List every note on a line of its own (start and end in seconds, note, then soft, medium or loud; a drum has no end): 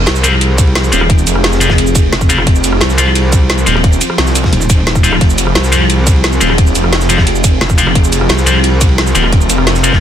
0.00 10.00 F3 medium
0.00 10.00 C4 medium
0.00 10.00 F4 medium
0.00 2.46 G#4 medium
0.06 0.91 C2 loud
0.06 snare loud
0.06 closed hi-hat medium
0.06 ride medium
0.15 snare soft
0.15 shaker soft
0.24 0.31 F3 medium
0.24 0.31 C4 medium
0.24 0.31 F4 medium
0.24 closed hi-hat loud
0.24 ride medium
0.24 shaker medium
0.41 closed hi-hat medium
0.41 ride medium
0.58 kick loud
0.58 closed hi-hat loud
0.58 ride medium
0.58 shaker medium
0.67 ride soft
0.75 snare loud
0.75 closed hi-hat medium
0.75 ride medium
0.84 shaker soft
0.92 1.25 D#1 loud
0.92 0.99 F3 medium
0.92 0.99 C4 medium
0.92 0.99 F4 loud
0.92 closed hi-hat loud
0.92 ride medium
0.92 shaker medium
1.01 cross-stick medium
1.10 kick loud
1.10 closed hi-hat medium
1.10 ride medium
1.18 shaker soft
1.27 2.11 F1 loud
1.27 closed hi-hat loud
1.27 ride medium
1.27 shaker medium
1.35 cross-stick medium
1.44 snare loud
1.44 closed hi-hat medium
1.44 ride loud
1.53 snare medium
1.53 shaker soft
1.61 1.68 F3 medium
1.61 1.68 C4 medium
1.61 1.68 F4 loud
1.61 closed hi-hat medium
1.61 ride medium
1.61 shaker medium
1.70 kick medium
1.70 snare medium
1.78 closed hi-hat medium
1.78 ride medium
1.87 shaker soft
1.95 kick loud
1.95 closed hi-hat loud
1.95 ride medium
1.95 shaker medium
2.12 2.45 F1 loud
2.12 snare loud
2.12 closed hi-hat medium
2.12 ride medium
2.21 kick loud
2.21 cross-stick soft
2.21 shaker soft
2.29 2.37 F3 medium
2.29 2.37 C4 medium
2.29 2.37 F4 loud
2.29 closed hi-hat loud
2.29 ride medium
2.29 shaker medium
2.38 cross-stick medium
2.47 2.80 F1 loud
2.47 5.20 C5 medium
2.47 kick loud
2.47 closed hi-hat medium
2.47 ride medium
2.55 shaker soft
2.64 closed hi-hat loud
2.64 ride medium
2.64 shaker medium
2.73 cross-stick medium
2.80 3.65 C2 medium
2.80 snare loud
2.80 closed hi-hat medium
2.80 ride medium
2.89 snare soft
2.89 shaker soft
2.98 3.05 F3 medium
2.98 3.05 C4 medium
2.98 3.05 F4 loud
2.98 closed hi-hat medium
2.98 ride medium
2.98 shaker medium
3.15 closed hi-hat medium
3.15 ride loud
3.32 kick loud
3.32 closed hi-hat medium
3.32 ride medium
3.32 shaker medium
3.49 snare loud
3.49 closed hi-hat medium
3.49 ride medium
3.57 ride medium
3.57 shaker soft
3.67 4.00 D#1 loud
3.67 3.74 F3 medium
3.67 3.74 C4 medium
3.67 3.74 F4 loud
3.67 closed hi-hat medium
3.67 ride medium
3.67 shaker medium
3.75 cross-stick medium
3.75 ride medium
3.84 kick loud
3.84 closed hi-hat medium
3.84 ride medium
3.93 shaker soft
4.01 closed hi-hat medium
4.01 ride medium
4.01 shaker medium
4.10 cross-stick medium
4.18 4.51 C2 medium
4.18 snare loud
4.18 closed hi-hat medium
4.18 ride medium
4.27 snare medium
4.27 shaker soft
4.35 closed hi-hat medium
4.35 ride medium
4.35 shaker medium
4.44 kick medium
4.44 snare medium
4.53 5.20 D#1 loud
4.53 closed hi-hat medium
4.53 ride medium
4.61 shaker soft
4.70 kick loud
4.70 closed hi-hat medium
4.70 ride medium
4.70 shaker medium
4.87 snare loud
4.87 closed hi-hat medium
4.87 ride medium
4.95 kick loud
4.95 cross-stick soft
4.95 shaker soft
5.04 5.11 F3 medium
5.04 5.11 C4 medium
5.04 5.11 F4 loud
5.04 closed hi-hat medium
5.04 ride medium
5.04 shaker medium
5.13 cross-stick medium
5.21 5.54 F1 medium
5.21 7.94 G#4 medium
5.21 kick loud
5.21 closed hi-hat medium
5.21 ride medium
5.30 shaker soft
5.38 closed hi-hat medium
5.38 ride medium
5.38 shaker medium
5.47 cross-stick medium
5.55 6.40 C2 loud
5.55 snare loud
5.55 closed hi-hat medium
5.55 ride medium
5.64 snare soft
5.64 shaker soft
5.72 5.79 F3 medium
5.72 5.79 C4 medium
5.72 5.79 F4 medium
5.72 closed hi-hat medium
5.72 ride medium
5.72 shaker medium
5.90 closed hi-hat medium
5.90 ride medium
6.07 kick loud
6.07 closed hi-hat loud
6.07 ride medium
6.07 shaker medium
6.16 ride soft
6.24 snare loud
6.24 closed hi-hat medium
6.24 ride medium
6.33 shaker soft
6.40 6.74 D#1 medium
6.40 6.48 F3 medium
6.40 6.48 C4 medium
6.40 6.48 F4 medium
6.40 closed hi-hat medium
6.40 ride medium
6.40 shaker medium
6.50 cross-stick medium
6.58 kick loud
6.58 closed hi-hat medium
6.58 ride medium
6.67 shaker soft
6.75 7.60 F1 loud
6.75 closed hi-hat medium
6.75 ride medium
6.75 shaker medium
6.84 cross-stick medium
6.93 snare loud
6.93 closed hi-hat medium
6.93 ride loud
7.01 snare soft
7.01 shaker soft
7.09 7.17 F3 medium
7.09 7.17 C4 medium
7.09 7.17 F4 loud
7.09 closed hi-hat medium
7.09 ride medium
7.09 shaker medium
7.18 kick medium
7.18 snare medium
7.26 closed hi-hat medium
7.26 ride medium
7.35 shaker soft
7.44 kick loud
7.44 closed hi-hat loud
7.44 ride medium
7.44 shaker medium
7.61 7.94 F1 medium
7.61 snare loud
7.61 closed hi-hat medium
7.61 ride medium
7.70 kick loud
7.70 cross-stick soft
7.70 shaker soft
7.78 7.85 F3 medium
7.78 7.85 C4 medium
7.78 7.85 F4 loud
7.78 closed hi-hat loud
7.78 ride medium
7.78 shaker medium
7.87 cross-stick medium
7.95 8.28 F1 loud
7.95 10.00 A#4 medium
7.95 kick loud
7.95 closed hi-hat medium
7.95 ride medium
8.04 shaker soft
8.12 closed hi-hat loud
8.12 ride medium
8.12 shaker medium
8.21 cross-stick medium
8.29 9.14 C2 loud
8.29 snare loud
8.29 closed hi-hat medium
8.29 ride medium
8.38 snare soft
8.38 shaker soft
8.47 8.54 F3 medium
8.47 8.54 C4 medium
8.47 8.54 F4 loud
8.47 closed hi-hat medium
8.47 ride medium
8.47 shaker medium
8.63 closed hi-hat medium
8.63 ride medium
8.81 kick loud
8.81 closed hi-hat loud
8.81 ride medium
8.81 shaker medium
8.89 ride soft
8.98 snare loud
8.98 closed hi-hat medium
8.98 ride medium
9.07 shaker soft
9.15 9.48 D#1 loud
9.15 9.22 F3 medium
9.15 9.22 C4 medium
9.15 9.22 F4 medium
9.15 closed hi-hat loud
9.15 ride medium
9.15 shaker medium
9.24 cross-stick medium
9.33 kick loud
9.33 closed hi-hat medium
9.33 ride medium
9.41 shaker soft
9.49 10.00 F1 loud
9.49 closed hi-hat loud
9.49 ride medium
9.49 shaker medium
9.58 cross-stick medium
9.67 snare loud
9.67 closed hi-hat medium
9.67 ride medium
9.75 snare medium
9.75 shaker soft
9.84 9.91 F3 medium
9.84 9.91 C4 medium
9.84 9.91 F4 loud
9.84 closed hi-hat loud
9.84 ride medium
9.84 shaker medium
9.93 kick medium
9.93 snare medium